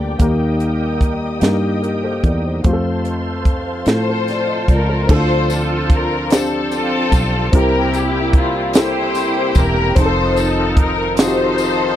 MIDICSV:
0, 0, Header, 1, 7, 480
1, 0, Start_track
1, 0, Tempo, 814111
1, 115, Time_signature, 6, 3, 24, 8
1, 7052, End_track
2, 0, Start_track
2, 0, Title_t, "String section"
2, 0, Program_c, 0, 48
2, 0, Note_on_c, 0, 74, 54
2, 0, Note_on_c, 0, 79, 51
2, 0, Note_on_c, 0, 86, 61
2, 90, Note_off_c, 0, 74, 0
2, 100, Note_off_c, 0, 86, 0
2, 123, Note_on_c, 0, 75, 59
2, 126, Note_on_c, 0, 87, 62
2, 1535, Note_off_c, 0, 79, 0
2, 1550, Note_off_c, 0, 75, 0
2, 1551, Note_off_c, 0, 87, 0
2, 1567, Note_on_c, 0, 81, 51
2, 1568, Note_on_c, 0, 72, 61
2, 1568, Note_on_c, 0, 84, 62
2, 1571, Note_on_c, 0, 77, 51
2, 2991, Note_off_c, 0, 81, 0
2, 2992, Note_off_c, 0, 72, 0
2, 2992, Note_off_c, 0, 84, 0
2, 2993, Note_off_c, 0, 77, 0
2, 7052, End_track
3, 0, Start_track
3, 0, Title_t, "String section"
3, 0, Program_c, 1, 48
3, 2296, Note_on_c, 1, 65, 57
3, 2297, Note_on_c, 1, 69, 57
3, 2309, Note_on_c, 1, 72, 80
3, 2752, Note_off_c, 1, 72, 0
3, 2791, Note_on_c, 1, 70, 69
3, 2986, Note_off_c, 1, 65, 0
3, 2986, Note_off_c, 1, 69, 0
3, 3008, Note_on_c, 1, 69, 70
3, 3012, Note_on_c, 1, 65, 79
3, 3016, Note_on_c, 1, 72, 106
3, 3017, Note_off_c, 1, 70, 0
3, 3249, Note_off_c, 1, 72, 0
3, 3256, Note_off_c, 1, 69, 0
3, 3263, Note_on_c, 1, 69, 81
3, 3493, Note_off_c, 1, 69, 0
3, 3508, Note_on_c, 1, 70, 81
3, 3703, Note_off_c, 1, 65, 0
3, 3735, Note_off_c, 1, 70, 0
3, 3748, Note_on_c, 1, 69, 78
3, 3969, Note_off_c, 1, 69, 0
3, 3971, Note_on_c, 1, 65, 73
3, 3975, Note_on_c, 1, 60, 63
3, 3976, Note_on_c, 1, 69, 94
3, 4422, Note_off_c, 1, 65, 0
3, 4424, Note_off_c, 1, 60, 0
3, 4425, Note_off_c, 1, 69, 0
3, 4455, Note_on_c, 1, 64, 71
3, 4457, Note_on_c, 1, 67, 72
3, 4460, Note_on_c, 1, 70, 91
3, 4689, Note_off_c, 1, 67, 0
3, 4690, Note_off_c, 1, 70, 0
3, 4696, Note_on_c, 1, 67, 85
3, 4928, Note_off_c, 1, 67, 0
3, 4943, Note_on_c, 1, 65, 71
3, 5143, Note_off_c, 1, 64, 0
3, 5155, Note_off_c, 1, 65, 0
3, 5175, Note_on_c, 1, 64, 67
3, 5175, Note_on_c, 1, 72, 83
3, 5177, Note_on_c, 1, 67, 68
3, 5646, Note_off_c, 1, 72, 0
3, 5651, Note_on_c, 1, 70, 95
3, 5861, Note_off_c, 1, 64, 0
3, 5862, Note_off_c, 1, 67, 0
3, 5884, Note_off_c, 1, 70, 0
3, 5886, Note_on_c, 1, 69, 74
3, 5888, Note_on_c, 1, 72, 100
3, 5893, Note_on_c, 1, 63, 70
3, 6119, Note_off_c, 1, 69, 0
3, 6121, Note_off_c, 1, 72, 0
3, 6126, Note_on_c, 1, 69, 92
3, 6360, Note_off_c, 1, 69, 0
3, 6368, Note_on_c, 1, 70, 86
3, 6578, Note_off_c, 1, 63, 0
3, 6584, Note_off_c, 1, 70, 0
3, 6608, Note_on_c, 1, 63, 67
3, 6608, Note_on_c, 1, 72, 91
3, 6613, Note_on_c, 1, 69, 66
3, 7052, Note_off_c, 1, 63, 0
3, 7052, Note_off_c, 1, 69, 0
3, 7052, Note_off_c, 1, 72, 0
3, 7052, End_track
4, 0, Start_track
4, 0, Title_t, "Upright piano"
4, 0, Program_c, 2, 0
4, 0, Control_c, 2, 64, 127
4, 0, Note_on_c, 2, 58, 60
4, 0, Note_on_c, 2, 62, 56
4, 0, Note_on_c, 2, 67, 55
4, 0, Note_on_c, 2, 72, 67
4, 111, Note_off_c, 2, 58, 0
4, 111, Note_on_c, 2, 58, 77
4, 114, Note_on_c, 2, 63, 68
4, 118, Note_on_c, 2, 51, 59
4, 120, Note_off_c, 2, 67, 0
4, 120, Note_on_c, 2, 67, 71
4, 123, Note_off_c, 2, 72, 0
4, 123, Control_c, 2, 64, 0
4, 124, Note_off_c, 2, 62, 0
4, 128, Note_on_c, 2, 70, 78
4, 230, Control_c, 2, 64, 127
4, 657, Note_off_c, 2, 58, 0
4, 658, Note_off_c, 2, 63, 0
4, 662, Note_off_c, 2, 67, 0
4, 665, Note_off_c, 2, 70, 0
4, 816, Note_off_c, 2, 51, 0
4, 828, Note_on_c, 2, 58, 59
4, 837, Note_on_c, 2, 63, 54
4, 841, Note_on_c, 2, 67, 54
4, 848, Note_on_c, 2, 70, 61
4, 1066, Note_off_c, 2, 70, 0
4, 1069, Note_off_c, 2, 67, 0
4, 1075, Note_on_c, 2, 70, 51
4, 1078, Note_on_c, 2, 67, 48
4, 1191, Note_off_c, 2, 70, 0
4, 1193, Note_off_c, 2, 67, 0
4, 1199, Note_on_c, 2, 72, 55
4, 1202, Note_on_c, 2, 69, 45
4, 1313, Note_off_c, 2, 72, 0
4, 1315, Note_off_c, 2, 69, 0
4, 1323, Note_on_c, 2, 70, 47
4, 1323, Note_on_c, 2, 74, 54
4, 1376, Note_off_c, 2, 58, 0
4, 1381, Note_off_c, 2, 63, 0
4, 1436, Note_off_c, 2, 70, 0
4, 1436, Note_off_c, 2, 74, 0
4, 1446, Note_on_c, 2, 75, 46
4, 1451, Note_on_c, 2, 72, 42
4, 1555, Note_on_c, 2, 57, 78
4, 1562, Note_on_c, 2, 60, 65
4, 1567, Control_c, 2, 64, 0
4, 1567, Note_on_c, 2, 65, 73
4, 1572, Note_on_c, 2, 67, 64
4, 1605, Note_off_c, 2, 67, 0
4, 1610, Note_on_c, 2, 69, 77
4, 1666, Control_c, 2, 64, 127
4, 1672, Note_off_c, 2, 75, 0
4, 1674, Note_off_c, 2, 72, 0
4, 2100, Note_off_c, 2, 57, 0
4, 2104, Note_off_c, 2, 60, 0
4, 2106, Note_off_c, 2, 65, 0
4, 2128, Note_off_c, 2, 69, 0
4, 2287, Note_on_c, 2, 69, 50
4, 2290, Note_on_c, 2, 65, 42
4, 2398, Note_off_c, 2, 69, 0
4, 2400, Note_off_c, 2, 65, 0
4, 2408, Note_on_c, 2, 72, 51
4, 2413, Note_on_c, 2, 69, 47
4, 2519, Note_off_c, 2, 72, 0
4, 2522, Note_off_c, 2, 69, 0
4, 2525, Note_on_c, 2, 74, 51
4, 2637, Note_on_c, 2, 75, 52
4, 2638, Note_off_c, 2, 74, 0
4, 2643, Note_on_c, 2, 72, 46
4, 2753, Note_off_c, 2, 75, 0
4, 2757, Note_off_c, 2, 72, 0
4, 2758, Note_on_c, 2, 74, 54
4, 2874, Note_off_c, 2, 74, 0
4, 2880, Note_on_c, 2, 72, 48
4, 2886, Note_on_c, 2, 69, 40
4, 2992, Note_on_c, 2, 60, 70
4, 2998, Note_on_c, 2, 62, 73
4, 3002, Note_off_c, 2, 69, 0
4, 3002, Note_on_c, 2, 50, 61
4, 3003, Note_on_c, 2, 64, 58
4, 3011, Control_c, 2, 64, 0
4, 3011, Note_on_c, 2, 69, 92
4, 3041, Note_off_c, 2, 64, 0
4, 3042, Note_on_c, 2, 65, 69
4, 3109, Note_off_c, 2, 72, 0
4, 3119, Control_c, 2, 64, 127
4, 3539, Note_off_c, 2, 60, 0
4, 3542, Note_off_c, 2, 62, 0
4, 3548, Note_off_c, 2, 69, 0
4, 3564, Note_off_c, 2, 65, 0
4, 3699, Note_off_c, 2, 50, 0
4, 3716, Note_on_c, 2, 60, 59
4, 3721, Note_on_c, 2, 62, 58
4, 3724, Note_on_c, 2, 65, 54
4, 3731, Note_on_c, 2, 67, 67
4, 4260, Note_off_c, 2, 60, 0
4, 4262, Note_off_c, 2, 62, 0
4, 4264, Note_off_c, 2, 65, 0
4, 4267, Note_off_c, 2, 67, 0
4, 4433, Note_on_c, 2, 60, 83
4, 4440, Note_on_c, 2, 64, 72
4, 4442, Note_on_c, 2, 48, 64
4, 4445, Note_on_c, 2, 67, 72
4, 4449, Control_c, 2, 64, 0
4, 4451, Note_on_c, 2, 70, 88
4, 4564, Control_c, 2, 64, 127
4, 4977, Note_off_c, 2, 60, 0
4, 4981, Note_off_c, 2, 64, 0
4, 4983, Note_off_c, 2, 67, 0
4, 4986, Note_off_c, 2, 70, 0
4, 5136, Note_off_c, 2, 48, 0
4, 5155, Note_on_c, 2, 60, 66
4, 5162, Note_on_c, 2, 64, 59
4, 5170, Note_on_c, 2, 67, 57
4, 5170, Note_on_c, 2, 69, 69
4, 5697, Note_off_c, 2, 60, 0
4, 5700, Note_off_c, 2, 64, 0
4, 5704, Note_off_c, 2, 67, 0
4, 5704, Note_off_c, 2, 69, 0
4, 5869, Note_on_c, 2, 60, 87
4, 5880, Note_on_c, 2, 63, 76
4, 5882, Note_on_c, 2, 65, 67
4, 5885, Control_c, 2, 64, 0
4, 5890, Note_on_c, 2, 68, 68
4, 5921, Note_off_c, 2, 68, 0
4, 5929, Note_on_c, 2, 69, 85
4, 6001, Control_c, 2, 64, 127
4, 6412, Note_off_c, 2, 60, 0
4, 6417, Note_off_c, 2, 63, 0
4, 6419, Note_off_c, 2, 65, 0
4, 6442, Note_off_c, 2, 69, 0
4, 6592, Note_on_c, 2, 60, 59
4, 6598, Note_on_c, 2, 63, 59
4, 6602, Note_on_c, 2, 65, 57
4, 6609, Note_on_c, 2, 66, 56
4, 6639, Note_off_c, 2, 66, 0
4, 6645, Note_on_c, 2, 67, 74
4, 7052, Note_off_c, 2, 60, 0
4, 7052, Note_off_c, 2, 63, 0
4, 7052, Note_off_c, 2, 65, 0
4, 7052, Note_off_c, 2, 67, 0
4, 7052, End_track
5, 0, Start_track
5, 0, Title_t, "Tonewheel organ"
5, 0, Program_c, 3, 16
5, 0, Note_on_c, 3, 50, 54
5, 0, Note_on_c, 3, 55, 51
5, 0, Note_on_c, 3, 58, 51
5, 0, Note_on_c, 3, 67, 59
5, 103, Note_off_c, 3, 50, 0
5, 120, Note_on_c, 3, 51, 55
5, 1537, Note_off_c, 3, 67, 0
5, 1538, Note_off_c, 3, 55, 0
5, 1542, Note_off_c, 3, 58, 0
5, 1548, Note_off_c, 3, 51, 0
5, 1567, Note_on_c, 3, 72, 60
5, 1572, Note_on_c, 3, 53, 58
5, 1574, Note_on_c, 3, 60, 54
5, 2991, Note_off_c, 3, 72, 0
5, 2994, Note_off_c, 3, 53, 0
5, 2995, Note_off_c, 3, 60, 0
5, 3004, Note_on_c, 3, 53, 70
5, 3004, Note_on_c, 3, 62, 56
5, 3005, Note_on_c, 3, 72, 72
5, 3007, Note_on_c, 3, 60, 61
5, 4427, Note_off_c, 3, 53, 0
5, 4428, Note_off_c, 3, 62, 0
5, 4428, Note_off_c, 3, 72, 0
5, 4442, Note_on_c, 3, 55, 68
5, 4446, Note_on_c, 3, 58, 61
5, 4447, Note_on_c, 3, 67, 68
5, 5863, Note_off_c, 3, 55, 0
5, 5865, Note_off_c, 3, 58, 0
5, 5865, Note_off_c, 3, 67, 0
5, 5871, Note_on_c, 3, 53, 63
5, 5874, Note_on_c, 3, 65, 73
5, 5875, Note_on_c, 3, 51, 70
5, 7052, Note_off_c, 3, 51, 0
5, 7052, Note_off_c, 3, 53, 0
5, 7052, Note_off_c, 3, 60, 0
5, 7052, Note_off_c, 3, 65, 0
5, 7052, End_track
6, 0, Start_track
6, 0, Title_t, "Fingered electric bass"
6, 0, Program_c, 4, 33
6, 0, Note_on_c, 4, 38, 67
6, 96, Note_off_c, 4, 38, 0
6, 115, Note_on_c, 4, 39, 87
6, 815, Note_off_c, 4, 39, 0
6, 836, Note_on_c, 4, 43, 79
6, 1295, Note_off_c, 4, 43, 0
6, 1317, Note_on_c, 4, 40, 71
6, 1540, Note_off_c, 4, 40, 0
6, 1559, Note_on_c, 4, 41, 85
6, 2258, Note_off_c, 4, 41, 0
6, 2279, Note_on_c, 4, 45, 73
6, 2759, Note_on_c, 4, 37, 72
6, 2768, Note_off_c, 4, 45, 0
6, 2981, Note_off_c, 4, 37, 0
6, 3001, Note_on_c, 4, 38, 97
6, 4177, Note_off_c, 4, 38, 0
6, 4196, Note_on_c, 4, 35, 85
6, 4419, Note_off_c, 4, 35, 0
6, 4442, Note_on_c, 4, 36, 91
6, 5614, Note_off_c, 4, 36, 0
6, 5633, Note_on_c, 4, 28, 89
6, 5855, Note_off_c, 4, 28, 0
6, 5874, Note_on_c, 4, 29, 101
6, 7052, Note_off_c, 4, 29, 0
6, 7052, End_track
7, 0, Start_track
7, 0, Title_t, "Drums"
7, 115, Note_on_c, 9, 42, 81
7, 116, Note_on_c, 9, 36, 91
7, 174, Note_off_c, 9, 42, 0
7, 175, Note_off_c, 9, 36, 0
7, 355, Note_on_c, 9, 42, 39
7, 414, Note_off_c, 9, 42, 0
7, 594, Note_on_c, 9, 36, 68
7, 600, Note_on_c, 9, 42, 41
7, 653, Note_off_c, 9, 36, 0
7, 659, Note_off_c, 9, 42, 0
7, 833, Note_on_c, 9, 42, 82
7, 845, Note_on_c, 9, 38, 89
7, 892, Note_off_c, 9, 42, 0
7, 904, Note_off_c, 9, 38, 0
7, 1083, Note_on_c, 9, 42, 36
7, 1142, Note_off_c, 9, 42, 0
7, 1319, Note_on_c, 9, 36, 71
7, 1320, Note_on_c, 9, 42, 43
7, 1378, Note_off_c, 9, 36, 0
7, 1379, Note_off_c, 9, 42, 0
7, 1557, Note_on_c, 9, 42, 76
7, 1560, Note_on_c, 9, 36, 92
7, 1616, Note_off_c, 9, 42, 0
7, 1619, Note_off_c, 9, 36, 0
7, 1798, Note_on_c, 9, 42, 40
7, 1857, Note_off_c, 9, 42, 0
7, 2036, Note_on_c, 9, 36, 73
7, 2039, Note_on_c, 9, 42, 39
7, 2095, Note_off_c, 9, 36, 0
7, 2098, Note_off_c, 9, 42, 0
7, 2274, Note_on_c, 9, 42, 77
7, 2286, Note_on_c, 9, 38, 91
7, 2333, Note_off_c, 9, 42, 0
7, 2345, Note_off_c, 9, 38, 0
7, 2523, Note_on_c, 9, 42, 38
7, 2532, Note_on_c, 9, 38, 26
7, 2582, Note_off_c, 9, 42, 0
7, 2591, Note_off_c, 9, 38, 0
7, 2761, Note_on_c, 9, 36, 75
7, 2763, Note_on_c, 9, 42, 41
7, 2820, Note_off_c, 9, 36, 0
7, 2822, Note_off_c, 9, 42, 0
7, 3002, Note_on_c, 9, 36, 106
7, 3003, Note_on_c, 9, 49, 92
7, 3061, Note_off_c, 9, 36, 0
7, 3062, Note_off_c, 9, 49, 0
7, 3242, Note_on_c, 9, 54, 58
7, 3245, Note_on_c, 9, 42, 48
7, 3301, Note_off_c, 9, 54, 0
7, 3303, Note_off_c, 9, 42, 0
7, 3477, Note_on_c, 9, 36, 90
7, 3479, Note_on_c, 9, 42, 46
7, 3536, Note_off_c, 9, 36, 0
7, 3538, Note_off_c, 9, 42, 0
7, 3717, Note_on_c, 9, 42, 92
7, 3728, Note_on_c, 9, 54, 79
7, 3729, Note_on_c, 9, 38, 106
7, 3776, Note_off_c, 9, 42, 0
7, 3787, Note_off_c, 9, 54, 0
7, 3788, Note_off_c, 9, 38, 0
7, 3959, Note_on_c, 9, 42, 46
7, 3961, Note_on_c, 9, 54, 46
7, 4018, Note_off_c, 9, 42, 0
7, 4020, Note_off_c, 9, 54, 0
7, 4199, Note_on_c, 9, 36, 80
7, 4201, Note_on_c, 9, 54, 55
7, 4203, Note_on_c, 9, 42, 49
7, 4258, Note_off_c, 9, 36, 0
7, 4260, Note_off_c, 9, 54, 0
7, 4262, Note_off_c, 9, 42, 0
7, 4438, Note_on_c, 9, 42, 93
7, 4440, Note_on_c, 9, 36, 119
7, 4497, Note_off_c, 9, 42, 0
7, 4499, Note_off_c, 9, 36, 0
7, 4679, Note_on_c, 9, 42, 46
7, 4684, Note_on_c, 9, 54, 51
7, 4738, Note_off_c, 9, 42, 0
7, 4743, Note_off_c, 9, 54, 0
7, 4914, Note_on_c, 9, 36, 86
7, 4914, Note_on_c, 9, 42, 46
7, 4973, Note_off_c, 9, 36, 0
7, 4973, Note_off_c, 9, 42, 0
7, 5150, Note_on_c, 9, 42, 90
7, 5160, Note_on_c, 9, 54, 91
7, 5162, Note_on_c, 9, 38, 114
7, 5209, Note_off_c, 9, 42, 0
7, 5219, Note_off_c, 9, 54, 0
7, 5221, Note_off_c, 9, 38, 0
7, 5393, Note_on_c, 9, 42, 44
7, 5396, Note_on_c, 9, 54, 49
7, 5403, Note_on_c, 9, 38, 31
7, 5452, Note_off_c, 9, 42, 0
7, 5455, Note_off_c, 9, 54, 0
7, 5461, Note_off_c, 9, 38, 0
7, 5630, Note_on_c, 9, 54, 61
7, 5635, Note_on_c, 9, 36, 83
7, 5635, Note_on_c, 9, 42, 50
7, 5689, Note_off_c, 9, 54, 0
7, 5694, Note_off_c, 9, 36, 0
7, 5694, Note_off_c, 9, 42, 0
7, 5872, Note_on_c, 9, 42, 92
7, 5875, Note_on_c, 9, 36, 100
7, 5931, Note_off_c, 9, 42, 0
7, 5934, Note_off_c, 9, 36, 0
7, 6111, Note_on_c, 9, 42, 43
7, 6117, Note_on_c, 9, 54, 55
7, 6170, Note_off_c, 9, 42, 0
7, 6175, Note_off_c, 9, 54, 0
7, 6349, Note_on_c, 9, 36, 91
7, 6351, Note_on_c, 9, 42, 47
7, 6408, Note_off_c, 9, 36, 0
7, 6410, Note_off_c, 9, 42, 0
7, 6585, Note_on_c, 9, 42, 85
7, 6597, Note_on_c, 9, 38, 118
7, 6600, Note_on_c, 9, 54, 80
7, 6644, Note_off_c, 9, 42, 0
7, 6656, Note_off_c, 9, 38, 0
7, 6659, Note_off_c, 9, 54, 0
7, 6827, Note_on_c, 9, 42, 46
7, 6830, Note_on_c, 9, 54, 51
7, 6886, Note_off_c, 9, 42, 0
7, 6889, Note_off_c, 9, 54, 0
7, 7052, End_track
0, 0, End_of_file